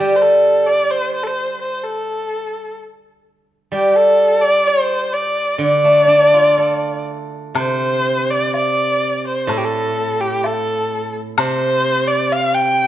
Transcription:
Already playing: D3
0.00 G3 G4
0.16 C5
0.22 A4
0.67 D5
0.91 C5
1.14 C5
1.23 A4 C5
1.61 C5
1.83 A4
3.72 G3 G4
3.96 A4
4.42 D5
4.67 C5
5.13 D5
5.58 D3 D5
5.84 A3
6.07 D4
6.34 F4
6.58 A4
7.55 C3 C5, high woodblock
8.30 D5
8.54 D5, low woodblock
9.27 C5
9.47 A2 A4, high woodblock
9.57 G4
9.64 A4
10.21 G4
10.44 A4, low woodblock
11.38 C3 C5, high woodblock
12.07 D5
12.32 F5, low woodblock
12.54 G5

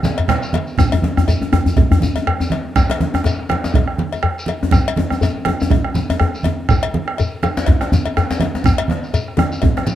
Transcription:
0.03 bombo rim, djembe slap, high conga, shekere
0.18 cowbell, high conga, djembe tone, djembe bass
0.28 bombo rim, djembe slap, low conga, shekere
0.42 djembe slap, high conga, shekere
0.53 cowbell, djembe slap, high conga
0.67 shekere
0.78 bombo rim, bombo low, djembe slap, low conga, djembe bass, shekere
0.92 cowbell, djembe tone, djembe bass
1.02 djembe slap, high conga, djembe tone
1.17 bombo rim, djembe bass, shekere
1.28 cowbell, djembe bass, shekere
1.42 bombo rim, djembe slap, djembe tone
1.52 bombo rim, djembe slap, high conga, djembe tone, djembe bass
1.66 high conga, djembe bass, shekere
1.76 bombo low, cowbell, djembe tone, low conga, djembe bass
1.91 bombo rim, djembe bass
2.01 djembe slap, high conga, djembe bass, shekere
2.16 cowbell, djembe tone, shekere
2.25 bombo rim, high conga, djembe bass
2.40 djembe tone, shekere
2.50 cowbell, djembe slap, high conga
2.65 high conga
2.76 bombo rim, bombo low, djembe slap, low conga, djembe bass, shekere
2.90 cowbell, djembe slap, djembe tone
3.00 djembe slap, high conga, djembe tone
3.14 bombo rim, djembe tone, shekere
3.24 cowbell, djembe slap, djembe bass, shekere
3.40 bombo rim, djembe slap
3.49 bombo rim, djembe slap, high conga
3.52 djembe slap, djembe tone
3.63 djembe slap, high conga, shekere
3.74 bombo low, cowbell, djembe tone, low conga, djembe bass
3.88 bombo rim
3.98 djembe slap, high conga
4.12 cowbell, djembe tone, shekere
4.23 bombo rim, high conga, djembe bass
4.39 shekere
4.46 cowbell, djembe slap, high conga
4.61 djembe slap, high conga, djembe tone
4.71 bombo rim, bombo low, djembe slap, djembe tone, low conga, djembe bass, shekere
4.86 cowbell, djembe tone
4.96 djembe slap, high conga, djembe tone
5.10 bombo rim, djembe tone, shekere
5.21 cowbell, djembe tone, djembe bass, shekere
5.35 bombo rim, djembe slap
5.45 bombo rim, djembe slap, high conga, djembe tone
5.48 djembe tone
5.59 high conga, djembe tone, shekere
5.70 bombo low, cowbell, djembe tone, low conga, djembe bass
5.84 bombo rim
5.95 djembe slap, high conga, djembe tone, shekere
6.10 cowbell, djembe tone, shekere
6.19 bombo rim, high conga, djembe tone, djembe bass
6.35 shekere
6.43 cowbell, djembe slap, high conga, djembe tone
6.58 djembe slap, high conga
6.69 bombo rim, bombo low, high conga, low conga, djembe bass, shekere
6.83 cowbell, djembe slap, high conga
6.94 djembe slap, high conga
7.08 bombo rim, djembe slap
7.18 bombo rim, cowbell, djembe bass, shekere
7.32 djembe slap
7.43 bombo rim, djembe slap, high conga, djembe tone, shekere
7.57 djembe slap, shekere
7.66 bombo low, cowbell, djembe slap, djembe tone, low conga, djembe bass
7.81 bombo rim, djembe slap, high conga
7.92 djembe slap, high conga, djembe bass, shekere
8.05 bombo rim, cowbell, djembe tone
8.17 bombo rim, djembe slap, djembe bass, shekere
8.31 djembe slap, high conga, shekere
8.40 bombo rim, cowbell, djembe slap, high conga, djembe tone
8.55 djembe slap, shekere
8.64 bombo rim, bombo low, djembe slap, low conga, djembe bass, shekere
8.78 cowbell, djembe tone
8.88 djembe slap, high conga
9.04 shekere
9.14 cowbell, djembe bass, shekere
9.27 bombo rim, djembe slap
9.37 bombo rim, djembe slap, djembe tone, high conga
9.51 high conga, shekere
9.62 bombo low, cowbell, djembe tone, low conga, djembe bass
9.77 bombo rim, djembe slap
9.87 djembe slap, high conga, shekere

